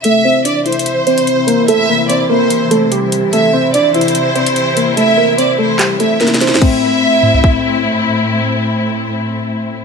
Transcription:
<<
  \new Staff \with { instrumentName = "Violin section" } { \time 4/4 \key a \phrygian \tempo 4 = 146 e''4 d''8 c''2~ c''8 | e''4 d''8 c''4. r4 | e''4 d''8 c''2~ c''8 | e''4 d''8 c''4 e''8 r4 |
e''2. r4 | r1 | }
  \new Staff \with { instrumentName = "Synth keys" } { \time 4/4 \key a \phrygian <a a'>8 <c' c''>8 d'8 <e' e''>4 <c' c''>4 <bes bes'>8 | <a a'>8 <bes bes'>8 <c' c''>8 <bes bes'>4 <a a'>8 <g g'>4 | <a a'>8 <c' c''>8 <d' d''>8 <e' e''>4 <c' c''>4 <bes bes'>8 | <a a'>8 <bes bes'>8 <c' c''>8 <a a'>8 <g g'>8 <a a'>8 <bes bes'>8 <c' c''>8 |
c'2. r4 | r1 | }
  \new Staff \with { instrumentName = "String section" } { \time 4/4 \key a \phrygian << { <c' e'>1~ | <c' e'>1 | <c' e'>1~ | <c' e'>1 |
<a, a c' e'>1~ | <a, a c' e'>1 | } \\ { <c e>1~ | <c e>1~ | <c e>1~ | <c e>1 |
r1 | r1 | } >> }
  \new DrumStaff \with { instrumentName = "Drums" } \drummode { \time 4/4 hh4 \tuplet 3/2 { hh16 r16 r16 hh16 hh16 hh16 } hh8 hh16 hh16 hh8 hh8 | hh4 hh4 hh8 hh8 hh8 hh8 | hh4 \tuplet 3/2 { hh16 r16 r16 hh16 hh16 hh16 } hh8 hh16 hh16 hh8 hh8 | hh4 hh4 <hc hh>8 hh8 \tuplet 3/2 { <hh sn>16 <hh sn>16 <hh sn>16 <hh sn>16 sn16 sn16 } |
<cymc bd>4 r8 toml16 tomfh16 bd4 r4 | r4 r4 r4 r4 | }
>>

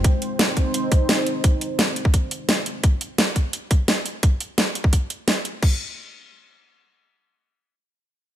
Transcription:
<<
  \new Staff \with { instrumentName = "Analog synth pad" } { \time 4/4 \key aes \major \tempo 4 = 172 <aes c' ees' c''>1~ | <aes c' ees' c''>1 | r1 | r1 |
r1 | r1 | }
  \new DrumStaff \with { instrumentName = "Drums" } \drummode { \time 4/4 <hh bd>8 hh8 <hh sn>8 <hh bd>8 hh8 <hh bd>8 <hh sn>8 hh8 | <hh bd>8 hh8 <hh sn>8 hh16 bd16 <hh bd>8 hh8 <hh sn>8 hh8 | <hh bd>8 hh8 <hh sn>8 <hh bd>8 hh8 <hh bd>8 <hh sn>8 hh8 | <hh bd>8 hh8 <hh sn>8 hh16 bd16 <hh bd>8 hh8 <hh sn>8 hh8 |
<cymc bd>4 r4 r4 r4 | r4 r4 r4 r4 | }
>>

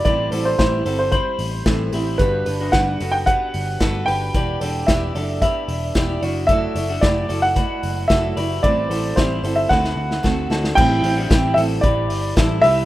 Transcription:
<<
  \new Staff \with { instrumentName = "Upright piano" } { \time 4/4 \key a \dorian \tempo 4 = 112 d''8. c''16 c''8. c''16 c''4 r4 | b'4 fis''8. g''16 fis''4. g''8~ | g''4 e''4 e''4. r8 | e''4 d''8. fis''4~ fis''16 e''4 |
d''4 c''8. e''16 fis''4. r8 | g''4. e''8 d''4 r8 e''8 | }
  \new Staff \with { instrumentName = "Clean electric guitar" } { \time 4/4 \key a \dorian <g' b'>8 <fis' a'>8 <e' g'>8 <fis' a'>8 <g' b''>4 <e' a'>8 <e' g'>8 | <d' g'>8. <d' fis'>16 <d' g'>8 <fis' a'>8 <g' b'>4 <fis' a'>8 <g' b'>8 | <g' b'>8 <fis' a'>8 <e' g'>8 <fis' a'>8 <g' b'>4 <e' g'>8 <d' fis'>8 | <fis' a'>8. <d' fis'>16 <e' g'>8 <fis' a'>8 <fis' b'>4 <fis' a'>8 <g' b'>8 |
<g' b'>8 <fis' a'>8 <e' g'>8 <fis' a'>8 <fis' b'>4 <fis' a'>8 <d' fis'>8 | <e' g'>8. <d' fis'>16 <e' g'>8 <fis' a'>8 <g' b'>4 <e' a'>8 <g' b'>8 | }
  \new Staff \with { instrumentName = "Steel-string acoustic guitar" } { \time 4/4 \key a \dorian <a, e g c' e' c''>8 <g c' e' c''>8 <a, e g c' e' c''>8 <g c' e' c''>8 <g c' e' c''>4 <a, e g c' e' c''>8 <g c' e' c''>8 | <g b d' fis' b'>8 <d' fis' b'>8 <g b d' fis' b'>8 <d' fis' b'>8 <b d' fis' b'>4 <g b d' fis' b'>8 <d' fis' b'>8 | <e b d' g' d''>8 <d' g' d''>8 <e b d' g' d''>8 <d' g' d''>8 <b d' g' d''>4 <e b d' g' d''>8 <e' fis' d''>8 | <fis a e' fis' d''>8 <e' fis' d''>8 <fis a e' fis' d''>8 <e' fis' d''>8 <a e' fis' d''>4 <fis a e' fis' d''>8 <e' fis' d''>8 |
<a, e g c' e' c''>8 <g c' e' c''>8 <a, e g c' e' c''>8 <g c' e' c''>8 <a c' fis' a'>4 <d a c' fis' a'>8 <c' fis' a'>8 | <a, e g c' e'>8 <g c' e'>8 <e g c' e'>8 <g c' e'>4. <e g c' e'>8 <g b e'>8 | }
  \new Staff \with { instrumentName = "Picked electric bass" } { \clef bass \time 4/4 \key a \dorian a,,8 a,,8 a,,8 g,,8. r16 a,,8 a,,8 a,,8 | g,,8 g,,8 g,,8 fis,,8. r16 g,,8 g,,8 g,,8 | e,,8 e,,8 e,,8 fis,,8. r16 e,,8 e,,8 fis,,8~ | fis,,8 fis,,8 fis,,8 fis,,8. r16 fis,,8 fis,,8 fis,,8 |
a,,8 a,,8 a,,8 g,,8 d,8 d,8 d,8 d,8 | a,,8 a,,8 a,,8 a,,8 a,,8 g,,8 a,,8 c,8 | }
  \new DrumStaff \with { instrumentName = "Drums" } \drummode { \time 4/4 <hh bd>8 hho8 <hh bd sn>8 hho8 <hh bd>8 hho8 <hh bd sn>8 hho8 | <hh bd>8 hho8 <hh bd sn>8 hho8 <hh bd>8 hho8 <hh bd sn>8 hho8 | <hh bd>8 hho8 <hh bd sn>8 hho8 <hh bd>8 hho8 <hh bd sn>8 hho8 | <hh bd>8 hho8 <hh bd sn>8 hho8 <hh bd>8 hho8 <hh bd sn>8 hho8 |
<hh bd>8 hho8 <hh bd sn>8 hho8 <bd sn>16 sn8 sn16 <bd sn>8 sn16 sn16 | <cymc bd>8 hho8 <hh bd sn>8 hho8 <hh bd>8 hho8 <hh bd sn>8 hho8 | }
>>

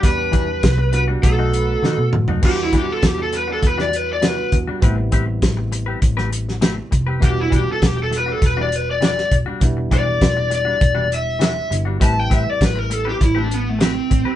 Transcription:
<<
  \new Staff \with { instrumentName = "Lead electric guitar" } { \time 4/4 \key e \minor \tempo 4 = 100 b'4. b'8 a'4. r8 | g'16 e'16 g'16 a'16 g'16 a'16 b'16 a'16 b'16 d''16 b'16 d''16 b'8 r8 | r1 | g'16 e'16 g'16 a'16 g'16 a'16 b'16 a'16 b'16 d''16 b'16 d''16 d''8 r8 |
r8 d''4 d''4 e''8 e''8 r8 | a''16 g''16 e''16 d''16 b'16 ais'16 a'16 g'16 e'16 d'16 b16 a16 c'4 | }
  \new Staff \with { instrumentName = "Horn section" } { \time 4/4 \key e \minor <g d'>4 r4 <b dis' a'>8 <b dis' b'>8. r8. | r1 | r1 | r1 |
r1 | r1 | }
  \new Staff \with { instrumentName = "Clean electric guitar" } { \time 4/4 \key e \minor r8 <e g d' fis'>16 r4 <g d' fis'>16 r16 <b, a dis' fis'>16 r8 <b, a dis' fis'>16 r8 <a dis' fis'>16 | <e g d' fis'>16 r16 <e g d' fis'>16 r4 <g d' fis'>16 r16 <e g d' fis'>16 r8 <e g d' fis'>16 r8 <g d' fis'>16 | <a c' g' b'>16 r16 <a c' g' b'>16 r4 <c' g' b'>16 r16 <a c' g' b'>16 r8 <a c' g' b'>16 r8 <c' g' b'>16 | <e g d' fis'>16 r16 <e g d' fis'>16 r4 <g d' fis'>16 r16 <e g d' fis'>16 r8 <e g d' fis'>16 r8 <g d' fis'>16 |
r8 <e g d' fis'>16 r4 <g d' fis'>16 r16 <e g d' fis'>16 r8 <e g d' fis'>16 r8 <g d' fis'>16 | <a c' g' b'>16 r16 <a c' g' b'>16 r4 <c' g' b'>16 r16 <a c' g' b'>16 r8 <a c' g' b'>16 r8 <c' g' b'>16 | }
  \new Staff \with { instrumentName = "Tine electric piano" } { \time 4/4 \key e \minor <g b d' g'>4. <g b d' fis'>8 <a b dis' fis'>2 | <g b d' fis'>2. <g b d' fis'>4 | <g b c' e'>1 | <g b d' fis'>1 |
<g b d' e'>2.~ <g b d' e'>8 <g b d' e'>8 | <g c' e' b'>1 | }
  \new Staff \with { instrumentName = "Picked electric bass" } { \clef bass \time 4/4 \key e \minor e,8 e,8 c,4 b,,4 dis16 b,16 a,16 fis,16 | e,8 e,16 r16 e,4 e,4. e,16 r16 | a,,8 a,,8 a,,4 a,,4. f,,8 | e,,8 e,,16 r16 e,,4 e,,4. e,,16 r16 |
e,,8 e,,8 e,,4 e,,4. g,,8 | a,,8 a,,16 r16 a,,4 a,,4. a,,16 r16 | }
  \new DrumStaff \with { instrumentName = "Drums" } \drummode { \time 4/4 <hh bd>8 <hh bd>8 <hh bd sn>8 hh8 <hh bd>8 hh8 sn8 toml16 tomfh16 | <cymc bd>8 <hh bd>8 <hh bd sn>8 hh8 <hh bd>16 sn16 hh8 <hh sn>8 <hh bd>8 | <hh bd>8 <hh bd>8 <hh bd sn>8 hh8 <hh bd>16 sn16 hh16 sn16 <hh sn>8 <hh bd>8 | <hh bd>8 <hh bd>8 <hh bd sn>8 hh8 <hh bd>8 hh8 <hh sn>16 sn16 <hh bd>8 |
<hh bd>8 <hh bd>8 <hh bd sn>8 hh8 <hh bd>8 hh8 <hh sn>8 hh8 | <hh bd>8 <hh bd>8 <hh bd sn>8 hh8 <hh bd>8 hh8 <hh sn>8 <hh bd>8 | }
>>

